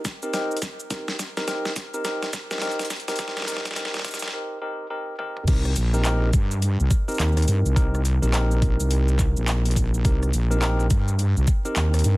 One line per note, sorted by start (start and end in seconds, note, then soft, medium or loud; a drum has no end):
0.05 kick loud
0.05 snare medium
0.05 shaker medium
0.23 0.32 C4 medium
0.23 0.32 D#4 medium
0.23 0.32 G4 medium
0.23 0.32 A#4 medium
0.23 shaker soft
0.34 0.58 C4 medium
0.34 0.58 D#4 medium
0.34 0.58 G4 medium
0.34 0.58 A#4 loud
0.34 snare medium
0.34 closed hi-hat medium
0.34 shaker soft
0.51 shaker soft
0.57 closed hi-hat medium
0.62 kick medium
0.62 snare medium
0.62 closed hi-hat medium
0.62 shaker medium
0.80 shaker soft
0.91 1.15 C4 medium
0.91 1.15 D#4 medium
0.91 1.15 G4 medium
0.91 1.15 A#4 medium
0.91 kick loud
0.91 snare medium
0.91 closed hi-hat medium
0.91 shaker soft
1.08 snare medium
1.08 shaker soft
1.19 snare medium
1.19 closed hi-hat medium
1.19 shaker medium
1.37 1.46 C4 medium
1.37 1.46 D#4 medium
1.37 1.46 G4 medium
1.37 1.46 A#4 medium
1.37 snare medium
1.37 shaker soft
1.47 1.72 C4 medium
1.47 1.72 D#4 medium
1.47 1.72 G4 medium
1.47 1.72 A#4 medium
1.47 snare loud
1.47 closed hi-hat medium
1.47 shaker soft
1.65 snare medium
1.65 shaker soft
1.76 kick loud
1.76 snare medium
1.76 closed hi-hat medium
1.76 shaker medium
1.94 2.03 C4 medium
1.94 2.03 D#4 medium
1.94 2.03 G4 medium
1.94 2.03 A#4 medium
1.94 shaker soft
2.05 2.29 C4 medium
2.05 2.29 D#4 medium
2.05 2.29 G4 medium
2.05 2.29 A#4 medium
2.05 snare loud
2.05 closed hi-hat medium
2.05 shaker soft
2.23 snare medium
2.23 shaker soft
2.33 kick loud
2.33 snare loud
2.33 shaker medium
2.51 2.60 C4 medium
2.51 2.60 D#4 medium
2.51 2.60 G4 medium
2.51 2.60 A#4 medium
2.51 snare medium
2.51 shaker soft
2.58 snare medium
2.62 2.86 C4 medium
2.62 2.86 D#4 medium
2.62 2.86 G4 medium
2.62 2.86 A#4 medium
2.62 snare loud
2.62 closed hi-hat medium
2.62 shaker soft
2.67 snare medium
2.67 shaker soft
2.79 snare medium
2.79 closed hi-hat soft
2.79 shaker soft
2.85 closed hi-hat medium
2.90 snare loud
2.90 closed hi-hat soft
2.90 shaker medium
2.96 closed hi-hat soft
3.00 closed hi-hat soft
3.08 3.18 C4 medium
3.08 3.17 D#4 medium
3.08 3.18 G4 medium
3.08 3.18 A#4 loud
3.08 snare medium
3.08 closed hi-hat soft
3.08 closed hi-hat medium
3.08 shaker soft
3.16 snare loud
3.16 closed hi-hat medium
3.19 3.43 C4 medium
3.19 3.43 D#4 medium
3.19 3.43 G4 medium
3.19 3.43 A#4 medium
3.19 kick loud
3.19 closed hi-hat medium
3.19 shaker soft
3.28 snare medium
3.37 snare medium
3.37 shaker soft
3.42 snare medium
3.45 3.72 C4 medium
3.45 3.72 D#4 medium
3.45 3.72 G4 medium
3.45 3.72 A#4 medium
3.45 snare medium
3.48 snare medium
3.48 closed hi-hat medium
3.48 shaker medium
3.52 snare soft
3.57 snare medium
3.61 snare soft
3.65 kick medium
3.65 snare loud
3.65 closed hi-hat soft
3.65 shaker soft
3.68 snare soft
3.71 snare medium
3.74 4.00 C4 medium
3.74 4.00 D#4 medium
3.74 4.00 G4 medium
3.74 4.00 A#4 medium
3.74 snare medium
3.76 snare loud
3.76 closed hi-hat medium
3.76 shaker soft
3.81 snare soft
3.85 snare medium
3.94 snare medium
3.94 shaker soft
3.97 snare medium
3.99 snare medium
4.02 4.29 C4 medium
4.02 snare soft
4.05 4.29 D#4 medium
4.05 4.29 G4 medium
4.05 4.29 A#4 medium
4.05 kick loud
4.05 snare loud
4.05 closed hi-hat medium
4.05 shaker soft
4.08 snare soft
4.08 shaker soft
4.11 snare medium
4.11 shaker soft
4.14 shaker medium
4.18 snare soft
4.18 shaker medium
4.22 snare medium
4.22 shaker soft
4.28 snare medium
4.33 4.57 C4 medium
4.33 4.58 D#4 medium
4.33 4.57 G4 medium
4.33 4.57 A#4 medium
4.62 4.86 C4 medium
4.62 4.86 D#4 medium
4.62 4.86 G4 medium
4.62 4.86 A#4 medium
4.90 5.15 C4 medium
4.90 5.15 D#4 medium
4.90 5.15 G4 medium
4.90 5.15 A#4 medium
5.19 5.43 C4 medium
5.19 5.43 D#4 medium
5.19 5.43 G4 medium
5.19 5.43 A#4 medium
5.19 mid tom medium
5.37 mid tom medium
5.47 5.75 C2 loud
5.47 5.72 C4 medium
5.47 5.72 D#4 medium
5.47 5.72 G4 medium
5.47 5.72 A#4 medium
5.47 kick loud
5.47 closed hi-hat medium
5.47 crash loud
5.47 shaker soft
5.65 cross-stick soft
5.65 shaker soft
5.76 6.32 A#1 loud
5.76 closed hi-hat medium
5.76 shaker medium
5.94 6.03 C4 medium
5.94 6.03 D#4 medium
5.94 6.03 G4 medium
5.94 6.03 A#4 medium
5.94 shaker soft
6.05 6.29 C4 medium
6.05 6.29 D#4 medium
6.05 6.29 G4 medium
6.05 6.29 A#4 loud
6.05 cross-stick medium
6.05 clap loud
6.05 closed hi-hat medium
6.05 shaker soft
6.33 6.77 G2 loud
6.33 kick loud
6.33 closed hi-hat medium
6.33 shaker medium
6.51 shaker soft
6.62 closed hi-hat medium
6.62 shaker soft
6.80 6.89 C2 loud
6.80 shaker soft
6.91 kick loud
6.91 shaker medium
7.08 7.74 C4 medium
7.08 7.74 D#4 medium
7.08 7.74 G4 medium
7.08 7.74 A#4 loud
7.08 shaker soft
7.11 shaker soft
7.14 shaker soft
7.17 7.46 D#2 loud
7.17 clap loud
7.17 closed hi-hat medium
7.17 shaker soft
7.28 shaker soft
7.32 shaker soft
7.37 cross-stick soft
7.37 closed hi-hat medium
7.37 shaker soft
7.42 closed hi-hat medium
7.48 7.63 G2 loud
7.48 closed hi-hat medium
7.48 shaker medium
7.65 8.20 C2 loud
7.65 shaker soft
7.76 8.00 C4 medium
7.76 8.00 D#4 medium
7.76 8.00 G4 medium
7.76 8.00 A#4 loud
7.76 kick loud
7.76 closed hi-hat medium
7.76 shaker soft
7.95 cross-stick soft
7.95 shaker soft
8.05 closed hi-hat medium
8.05 shaker medium
8.22 8.77 A#1 loud
8.22 8.32 C4 medium
8.22 8.32 D#4 medium
8.22 8.32 G4 medium
8.22 8.32 A#4 medium
8.22 shaker soft
8.33 10.02 C4 medium
8.33 10.02 D#4 medium
8.33 10.02 G4 medium
8.33 10.02 A#4 loud
8.33 cross-stick medium
8.33 clap loud
8.33 closed hi-hat medium
8.33 shaker soft
8.51 shaker soft
8.62 kick loud
8.62 closed hi-hat medium
8.80 9.34 C2 loud
8.80 shaker medium
8.91 closed hi-hat medium
8.91 shaker soft
9.08 shaker soft
9.19 kick loud
9.19 clap soft
9.19 shaker medium
9.37 10.03 A#1 loud
9.37 shaker soft
9.48 clap loud
9.48 closed hi-hat medium
9.48 shaker soft
9.66 closed hi-hat medium
9.66 shaker soft
9.71 closed hi-hat medium
9.76 kick medium
9.76 closed hi-hat medium
9.76 shaker medium
9.94 shaker soft
10.04 10.32 C2 loud
10.04 10.29 C4 medium
10.04 10.29 D#4 medium
10.04 10.29 G4 medium
10.04 10.29 A#4 medium
10.04 kick loud
10.04 closed hi-hat medium
10.04 shaker soft
10.23 cross-stick soft
10.23 shaker soft
10.33 10.89 A#1 loud
10.33 closed hi-hat medium
10.33 shaker medium
10.50 10.60 C4 medium
10.50 10.60 D#4 medium
10.50 10.60 G4 medium
10.50 10.60 A#4 medium
10.50 shaker soft
10.61 10.86 C4 medium
10.61 10.86 D#4 medium
10.61 10.86 G4 medium
10.61 10.86 A#4 loud
10.61 cross-stick medium
10.61 clap loud
10.61 shaker soft
10.80 shaker soft
10.90 11.34 G2 loud
10.90 kick loud
10.90 closed hi-hat medium
10.90 shaker medium
11.08 shaker soft
11.19 closed hi-hat medium
11.19 shaker soft
11.37 11.46 C2 loud
11.37 shaker soft
11.47 kick loud
11.47 shaker medium
11.65 12.17 C4 medium
11.65 12.17 D#4 medium
11.65 12.17 G4 medium
11.65 12.17 A#4 loud
11.65 shaker soft
11.76 12.03 D#2 loud
11.76 clap loud
11.76 closed hi-hat medium
11.76 shaker soft
11.94 cross-stick soft
11.94 closed hi-hat medium
11.94 shaker soft
11.99 closed hi-hat medium
12.04 12.17 G2 loud
12.04 closed hi-hat medium
12.04 shaker medium